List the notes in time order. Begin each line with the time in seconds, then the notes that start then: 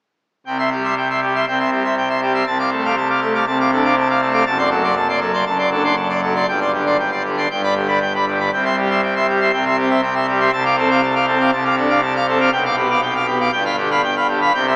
0.46 C2 C3 G5
0.59 E5 C6
0.72 G3 G4
0.84 E5 C6
0.97 G5
1.10 E5 C6
1.22 G3 G4
1.35 E5 C6
1.47 C2 C3 G5
1.60 E5 C6
1.72 G4
1.84 E5 C6
1.97 G5
2.09 E5 C6
2.22 G3 G4
2.34 E5 C6
2.47 C2 C3 A5
2.59 F5 D6
2.72 A3 A4
2.85 F5 D6
2.97 A5
3.09 F5 D6
3.22 A3 A4
3.34 F5 D6
3.47 C2 C3 A5
3.60 F5 D6
3.72 D4 A4
3.85 F5 D6
3.97 A5
4.10 F5 D6
4.21 A3 A4
4.33 F5 D6
4.46 F#1 F#2 A5
4.58 D5 C6
4.71 F#3 A4
4.84 D5 C6
4.96 A5
5.09 D5 C6
5.20 F#3 A4
5.33 D5 C6
5.46 F#1 F#2 A5
5.58 D5 C6
5.71 D4 A4
5.84 D5 C6
5.96 A5
6.09 D5 C6
6.22 F#3 A4
6.36 D5 C6
6.48 G1 G2 G5
6.61 D5 C6
6.73 D3 G4
6.86 D5 C6
6.99 G5
7.11 D5 C6
7.25 D3 G4
7.37 D5 C6
7.50 G1 G2 G5
7.63 D5 B5
7.76 D3 G4
7.88 D5 B5
8.02 G5
8.14 D5 B5
8.27 D3 G4
8.40 D5 B5
8.52 C2 C3 G5
8.65 E5 C6
8.78 G3 G4
8.90 E5 C6
9.03 G5
9.16 E5 C6
9.28 G3 G4
9.41 E5 C6
9.53 C2 C3 G5
9.66 E5 C6
9.78 C4 G4
9.90 E5 C6
10.03 G5
10.15 E5 C6
10.28 G3 G4
10.40 E5 C6
10.52 C2 C3 A5
10.65 F5 D6
10.78 C4 A4
10.91 F5 D6
11.03 A5
11.15 F5 D6
11.27 C4 A4
11.40 F5 D6
11.53 C2 C3 A5
11.64 F5 D6
11.78 D4 A4
11.90 F5 D6
12.02 A5
12.16 F5 D6
12.28 C4 A4
12.40 F5 D6
12.52 B1 B2 G5
12.65 F5 D6
12.77 B3 G4
12.90 F5 D6
13.03 G5
13.16 F5 D6
13.27 B3 G4
13.40 F5 D6
13.52 G1 G2 G5
13.65 F5 B5
13.78 D3 G4
13.91 F5 B5
14.04 G5
14.16 F5 B5
14.28 D3 G4
14.41 F5 B5
14.54 C2 C3 G5
14.67 E5 C6